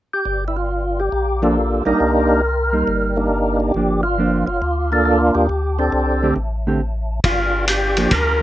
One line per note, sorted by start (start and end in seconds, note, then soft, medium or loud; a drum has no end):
0.14 0.45 G4 medium
0.25 1.09 G1 medium
0.48 0.56 E4 medium
0.57 1.01 F4 medium
1.00 1.85 G4 medium
1.12 1.82 A#1 medium
1.42 1.55 F3 soft
1.42 1.83 A#3 soft
1.42 1.56 A#3 soft
1.42 1.83 D4 soft
1.42 1.56 D4 medium
1.42 1.84 F4 soft
1.42 1.84 A4 medium
1.85 1.93 A#1 soft
1.85 1.99 G3 soft
1.85 2.41 A#3 medium
1.85 1.99 A#3 soft
1.85 2.41 D4 medium
1.85 2.41 D#4 medium
1.85 1.99 D#4 medium
1.85 2.42 G4 medium
1.85 3.57 A#4 medium
2.00 2.84 C2 medium
2.73 3.28 G3 soft
2.73 3.29 A#3 medium
2.73 3.29 D#4 soft
2.87 3.71 G1 medium
3.16 3.72 A#3 medium
3.16 3.72 D4 soft
3.16 3.72 D#4 soft
3.16 3.59 G4 medium
3.60 4.01 G4 medium
3.74 4.44 G1 medium
3.74 4.02 F3 soft
3.74 4.02 A#3 soft
3.74 4.03 D4 soft
4.03 4.45 F4 medium
4.18 4.45 F3 medium
4.18 4.46 A#3 medium
4.18 4.46 D4 medium
4.47 4.61 F#1 medium
4.47 4.91 F4 medium
4.62 5.31 D2 medium
4.92 5.47 A#3 medium
4.92 5.47 D4 soft
4.92 5.47 F4 medium
4.92 5.04 A4 medium
5.05 5.19 A4 medium
5.34 5.49 D#2 medium
5.34 5.78 G4 medium
5.49 5.90 D2 medium
5.79 6.34 C4 medium
5.79 6.34 D4 medium
5.79 6.34 G4 medium
5.79 6.34 A4 medium
5.92 6.34 C2 medium
6.23 6.36 D3 soft
6.23 6.36 A3 soft
6.23 6.36 C4 soft
6.23 6.36 G4 medium
6.36 7.20 A1 medium
6.67 6.80 D3 medium
6.67 6.80 A3 medium
6.67 6.80 C4 medium
6.67 6.80 G4 medium
7.24 8.07 G1 medium
7.24 7.65 F4 medium
7.24 kick soft
7.24 ride medium
7.67 8.14 G4 medium
7.67 hi-hat pedal medium
7.67 ride medium
7.97 8.10 F3 soft
7.97 8.11 A#3 soft
7.97 8.11 D4 soft
7.97 ride soft
8.11 8.42 D2 medium
8.11 8.42 A#4 loud
8.11 kick soft
8.11 ride medium